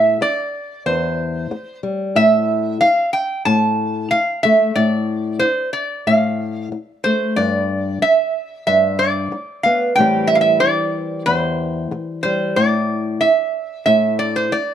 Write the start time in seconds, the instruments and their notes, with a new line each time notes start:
Already playing: steel-string acoustic guitar A2, resonator guitar played with a steel bar E5
0.21 resonator guitar played with a steel bar D5, muted steel-string acoustic guitar stroke
0.86 steel-string acoustic guitar E2, resonator guitar played with a steel bar C5
1.51 muted steel-string acoustic guitar stroke
1.83 steel-string acoustic guitar G3
2.15 steel-string acoustic guitar A2, resonator guitar played with a steel bar E5
2.81 resonator guitar played with a steel bar F5, muted steel-string acoustic guitar stroke
3.13 resonator guitar played with a steel bar G5
3.45 steel-string acoustic guitar A2, resonator guitar played with a steel bar A5
4.11 resonator guitar played with a steel bar F5, muted steel-string acoustic guitar stroke
4.43 steel-string acoustic guitar A3, resonator guitar played with a steel bar E5
4.76 steel-string acoustic guitar A2, resonator guitar played with a steel bar D5
5.39 resonator guitar played with a steel bar C5, muted steel-string acoustic guitar stroke
5.73 resonator guitar played with a steel bar D5
6.07 steel-string acoustic guitar A2, resonator guitar played with a steel bar F5
6.72 muted steel-string acoustic guitar stroke
7.04 steel-string acoustic guitar A3, resonator guitar played with a steel bar C5
7.36 steel-string acoustic guitar G2, resonator guitar played with a steel bar D5
8.02 resonator guitar played with a steel bar E5, muted steel-string acoustic guitar stroke
8.67 steel-string acoustic guitar G2, resonator guitar played with a steel bar E5
8.99 resonator guitar played with a steel bar D5
9.32 muted steel-string acoustic guitar stroke
9.63 steel-string acoustic guitar B3, resonator guitar played with a steel bar F5
9.96 steel-string acoustic guitar A2 E3 G3, resonator guitar played with a steel bar G5
10.00 steel-string acoustic guitar C4 G4
10.27 resonator guitar played with a steel bar E5
10.35 resonator guitar played with a steel bar F5
10.41 resonator guitar played with a steel bar E5
10.60 resonator guitar played with a steel bar D5, muted steel-string acoustic guitar stroke
11.26 steel-string acoustic guitar E2, resonator guitar played with a steel bar C5
11.91 muted steel-string acoustic guitar stroke
12.23 steel-string acoustic guitar G3, resonator guitar played with a steel bar C5
12.56 steel-string acoustic guitar A2, resonator guitar played with a steel bar D5
13.21 resonator guitar played with a steel bar E5, muted steel-string acoustic guitar stroke
13.86 steel-string acoustic guitar A2, resonator guitar played with a steel bar E5
14.19 resonator guitar played with a steel bar D5
14.36 resonator guitar played with a steel bar C5
14.52 resonator guitar played with a steel bar D5, muted steel-string acoustic guitar stroke